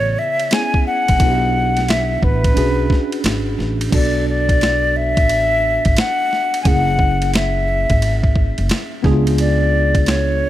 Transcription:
Already playing: A1 C#3 B3 E4 G#4 C#5
0.19 E5
0.40 ride
0.51 B3 C#4 E4 G#4 G#5, snare, hi-hat pedal, ride
0.74 kick
0.87 F#5
1.08 A1, kick, ride
1.18 B1 B3 D4 E4 F#4, kick, ride
1.28 G4
1.77 snare, ride
1.88 E5, snare, hi-hat pedal, ride
2.23 A1 B4, kick
2.44 kick, ride
2.54 B1 C#4 D4 F#4 G#4, ride
2.90 kick, snare
3.12 ride
3.24 G#1, snare, hi-hat pedal, ride
3.58 A1, snare
3.81 ride
3.91 B1 B3 D4 F#4 A4 D5, kick, crash, ride
4.29 D5
4.49 kick, ride
4.61 snare, hi-hat pedal, ride
4.97 E5
5.17 A1, kick, ride
5.29 ride
5.85 G#1, kick, ride
5.97 F#5, snare, hi-hat pedal, ride
6.33 snare
6.54 ride
6.62 F#1 A3 C#4 E4 G#5, kick, ride
6.67 A#3 G#4 F#5
6.99 kick
7.22 ride
7.34 E5, snare, hi-hat pedal, ride
7.90 G#1, kick, ride
8.02 ride
8.24 kick
8.36 kick
8.58 F#1, ride
8.69 snare, hi-hat pedal, ride
9.03 C#2 B3 D4 E4 G#4, kick, snare
9.11 F4
9.27 ride
9.38 D5, ride
9.95 kick, ride
10.06 C#5, snare, hi-hat pedal, ride

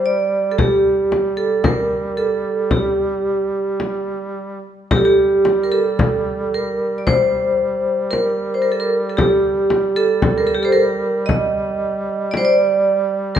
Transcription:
Already playing: G3
0.06 D5
0.52 A4
0.58 G4, frame drum
1.12 frame drum
1.37 A4
1.64 A#4, frame drum
2.17 A4
2.71 G4, frame drum
3.80 frame drum
4.91 G3 G4, frame drum
4.96 A4
5.05 G4
5.45 frame drum
5.64 A#4
5.72 A4
5.99 frame drum
6.54 A#4
6.98 D5
7.07 C5, frame drum
8.11 A#4, frame drum
8.54 C5
8.62 A#4
8.72 A4
8.80 A#4
9.09 A4
9.17 G4, frame drum
9.70 frame drum
9.96 A4
10.22 frame drum
10.38 A#4
10.47 A4
10.54 G4
10.63 A4 C5
10.72 A#4
11.26 D#5, frame drum
12.31 D5, frame drum
12.37 C5
12.45 D5
13.35 A#4, frame drum

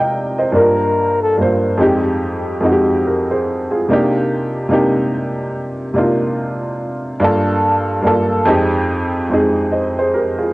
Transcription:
Already playing: C3 A#3 D4 D#4 G4 A#4 D5 F5
0.00 D#5 G5
0.38 C5 D#5
0.52 G2 A#3 D4 F4 A#4
0.56 A#4
1.22 A4
1.38 G2 A#3 D4 F4
1.42 C5
1.77 F2 G#3 C4 D#4 G4
1.82 G4
2.61 F2 G#3 C4 D#4
2.66 F#4
2.72 G4
3.07 G4 A#4
3.31 G#4 C5
3.71 F4 G#4
3.89 C3 A#3 D4 D#4
3.93 G4
4.69 C3 A#3 D4 D#4
4.73 G4
5.94 C3 A#3 D4 D#4
5.98 F4
7.20 G2 A#3 D4 F4
7.24 A4
8.02 G2 A#3 D4 F4
8.07 A4
8.45 F2 G#3 C4 D#4
8.49 G4
9.29 F2 G#3 C4 D#4
9.34 G#4
9.72 C5 D#5
9.99 G#4 C5
10.14 G4 A#4
10.38 F4 G#4

